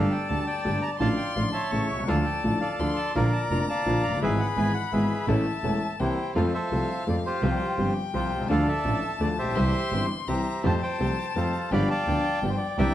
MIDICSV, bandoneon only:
0, 0, Header, 1, 2, 480
1, 0, Start_track
1, 0, Key_signature, -1, "minor"
1, 0, Tempo, 356506
1, 1356, Time_signature, 3, 2, 24, 8
1, 8560, Key_signature, -1, "major"
1, 17425, End_track
2, 0, Start_track
2, 0, Title_t, "Bandoneon"
2, 0, Program_c, 0, 23
2, 0, Note_on_c, 0, 69, 76
2, 0, Note_on_c, 0, 74, 73
2, 0, Note_on_c, 0, 77, 107
2, 153, Note_on_c, 0, 79, 91
2, 167, Note_off_c, 0, 77, 0
2, 381, Note_off_c, 0, 79, 0
2, 383, Note_on_c, 0, 81, 90
2, 591, Note_off_c, 0, 74, 0
2, 592, Note_off_c, 0, 69, 0
2, 614, Note_off_c, 0, 81, 0
2, 627, Note_on_c, 0, 79, 97
2, 642, Note_on_c, 0, 74, 76
2, 1104, Note_on_c, 0, 82, 92
2, 1125, Note_off_c, 0, 79, 0
2, 1214, Note_off_c, 0, 82, 0
2, 1306, Note_off_c, 0, 74, 0
2, 1346, Note_on_c, 0, 81, 103
2, 1362, Note_on_c, 0, 74, 74
2, 1363, Note_on_c, 0, 77, 76
2, 1456, Note_off_c, 0, 81, 0
2, 1573, Note_on_c, 0, 79, 89
2, 1795, Note_off_c, 0, 77, 0
2, 1807, Note_off_c, 0, 79, 0
2, 1815, Note_on_c, 0, 77, 88
2, 1929, Note_off_c, 0, 77, 0
2, 2030, Note_off_c, 0, 74, 0
2, 2049, Note_on_c, 0, 81, 91
2, 2065, Note_on_c, 0, 76, 69
2, 2070, Note_on_c, 0, 73, 71
2, 2513, Note_off_c, 0, 81, 0
2, 2747, Note_off_c, 0, 76, 0
2, 2750, Note_off_c, 0, 73, 0
2, 2805, Note_on_c, 0, 77, 94
2, 2815, Note_on_c, 0, 74, 69
2, 2817, Note_on_c, 0, 69, 62
2, 3030, Note_off_c, 0, 77, 0
2, 3035, Note_on_c, 0, 79, 82
2, 3274, Note_on_c, 0, 81, 76
2, 3290, Note_off_c, 0, 79, 0
2, 3385, Note_off_c, 0, 81, 0
2, 3484, Note_off_c, 0, 74, 0
2, 3485, Note_off_c, 0, 69, 0
2, 3508, Note_on_c, 0, 77, 82
2, 3523, Note_on_c, 0, 74, 64
2, 3526, Note_on_c, 0, 69, 61
2, 3989, Note_on_c, 0, 81, 96
2, 4016, Note_off_c, 0, 77, 0
2, 4198, Note_off_c, 0, 74, 0
2, 4199, Note_off_c, 0, 69, 0
2, 4223, Note_off_c, 0, 81, 0
2, 4244, Note_on_c, 0, 77, 100
2, 4257, Note_on_c, 0, 70, 76
2, 4259, Note_on_c, 0, 74, 75
2, 4470, Note_off_c, 0, 77, 0
2, 4483, Note_on_c, 0, 81, 86
2, 4593, Note_off_c, 0, 81, 0
2, 4726, Note_on_c, 0, 82, 83
2, 4835, Note_off_c, 0, 82, 0
2, 4923, Note_off_c, 0, 70, 0
2, 4924, Note_off_c, 0, 74, 0
2, 4966, Note_on_c, 0, 81, 96
2, 4982, Note_on_c, 0, 74, 75
2, 4984, Note_on_c, 0, 77, 70
2, 5411, Note_off_c, 0, 81, 0
2, 5434, Note_on_c, 0, 82, 105
2, 5544, Note_off_c, 0, 82, 0
2, 5640, Note_off_c, 0, 74, 0
2, 5641, Note_off_c, 0, 77, 0
2, 5689, Note_on_c, 0, 76, 104
2, 5698, Note_on_c, 0, 68, 64
2, 5699, Note_on_c, 0, 71, 71
2, 5915, Note_on_c, 0, 78, 80
2, 5932, Note_off_c, 0, 76, 0
2, 6024, Note_off_c, 0, 78, 0
2, 6153, Note_on_c, 0, 80, 87
2, 6356, Note_off_c, 0, 68, 0
2, 6356, Note_off_c, 0, 71, 0
2, 6378, Note_off_c, 0, 80, 0
2, 6382, Note_on_c, 0, 78, 91
2, 6626, Note_on_c, 0, 76, 77
2, 6635, Note_off_c, 0, 78, 0
2, 6639, Note_on_c, 0, 68, 57
2, 6639, Note_on_c, 0, 71, 57
2, 7079, Note_off_c, 0, 68, 0
2, 7079, Note_off_c, 0, 71, 0
2, 8016, Note_off_c, 0, 76, 0
2, 8083, Note_on_c, 0, 72, 82
2, 8094, Note_on_c, 0, 67, 60
2, 8096, Note_on_c, 0, 64, 56
2, 8531, Note_off_c, 0, 72, 0
2, 8537, Note_off_c, 0, 67, 0
2, 8538, Note_off_c, 0, 64, 0
2, 8561, Note_on_c, 0, 77, 77
2, 8571, Note_on_c, 0, 72, 58
2, 8572, Note_on_c, 0, 69, 64
2, 8670, Note_off_c, 0, 77, 0
2, 8792, Note_off_c, 0, 69, 0
2, 8792, Note_off_c, 0, 72, 0
2, 8801, Note_on_c, 0, 76, 83
2, 8812, Note_on_c, 0, 69, 64
2, 8812, Note_on_c, 0, 72, 52
2, 9478, Note_off_c, 0, 76, 0
2, 9484, Note_off_c, 0, 69, 0
2, 9484, Note_off_c, 0, 72, 0
2, 9543, Note_on_c, 0, 74, 71
2, 9649, Note_off_c, 0, 74, 0
2, 9770, Note_on_c, 0, 72, 92
2, 9779, Note_on_c, 0, 67, 66
2, 9782, Note_on_c, 0, 65, 68
2, 10674, Note_off_c, 0, 72, 0
2, 10679, Note_off_c, 0, 67, 0
2, 10680, Note_off_c, 0, 65, 0
2, 10962, Note_on_c, 0, 72, 77
2, 10969, Note_on_c, 0, 65, 54
2, 10975, Note_on_c, 0, 67, 56
2, 11407, Note_off_c, 0, 72, 0
2, 11411, Note_off_c, 0, 65, 0
2, 11414, Note_off_c, 0, 67, 0
2, 11450, Note_on_c, 0, 77, 103
2, 11453, Note_on_c, 0, 74, 66
2, 11456, Note_on_c, 0, 69, 71
2, 11672, Note_off_c, 0, 69, 0
2, 11690, Note_on_c, 0, 76, 94
2, 11691, Note_off_c, 0, 77, 0
2, 11693, Note_on_c, 0, 69, 63
2, 12115, Note_off_c, 0, 74, 0
2, 12356, Note_off_c, 0, 69, 0
2, 12389, Note_on_c, 0, 74, 73
2, 12426, Note_off_c, 0, 76, 0
2, 12499, Note_off_c, 0, 74, 0
2, 12635, Note_on_c, 0, 76, 97
2, 12638, Note_on_c, 0, 72, 78
2, 12639, Note_on_c, 0, 67, 68
2, 13546, Note_off_c, 0, 76, 0
2, 13548, Note_off_c, 0, 67, 0
2, 13548, Note_off_c, 0, 72, 0
2, 13850, Note_on_c, 0, 76, 76
2, 13852, Note_on_c, 0, 67, 57
2, 13853, Note_on_c, 0, 72, 63
2, 14299, Note_off_c, 0, 67, 0
2, 14299, Note_off_c, 0, 72, 0
2, 14342, Note_on_c, 0, 72, 67
2, 14344, Note_on_c, 0, 81, 98
2, 14346, Note_off_c, 0, 76, 0
2, 14449, Note_off_c, 0, 81, 0
2, 14564, Note_off_c, 0, 72, 0
2, 14577, Note_on_c, 0, 79, 91
2, 14584, Note_on_c, 0, 72, 69
2, 15162, Note_off_c, 0, 79, 0
2, 15215, Note_on_c, 0, 79, 67
2, 15254, Note_off_c, 0, 72, 0
2, 15303, Note_off_c, 0, 79, 0
2, 15304, Note_on_c, 0, 77, 79
2, 15307, Note_on_c, 0, 72, 62
2, 15311, Note_on_c, 0, 69, 64
2, 15749, Note_off_c, 0, 77, 0
2, 15750, Note_off_c, 0, 72, 0
2, 15752, Note_off_c, 0, 69, 0
2, 15793, Note_on_c, 0, 83, 106
2, 15796, Note_on_c, 0, 74, 78
2, 15796, Note_on_c, 0, 77, 76
2, 16006, Note_off_c, 0, 77, 0
2, 16008, Note_off_c, 0, 74, 0
2, 16009, Note_off_c, 0, 83, 0
2, 16027, Note_on_c, 0, 77, 74
2, 16027, Note_on_c, 0, 81, 105
2, 16028, Note_on_c, 0, 74, 69
2, 16686, Note_off_c, 0, 77, 0
2, 16687, Note_off_c, 0, 74, 0
2, 16740, Note_on_c, 0, 74, 77
2, 16757, Note_off_c, 0, 81, 0
2, 16822, Note_on_c, 0, 72, 74
2, 16823, Note_off_c, 0, 74, 0
2, 16916, Note_off_c, 0, 72, 0
2, 16926, Note_on_c, 0, 74, 93
2, 17194, Note_off_c, 0, 74, 0
2, 17215, Note_on_c, 0, 79, 109
2, 17221, Note_on_c, 0, 74, 75
2, 17221, Note_on_c, 0, 76, 82
2, 17425, Note_off_c, 0, 74, 0
2, 17425, Note_off_c, 0, 76, 0
2, 17425, Note_off_c, 0, 79, 0
2, 17425, End_track
0, 0, End_of_file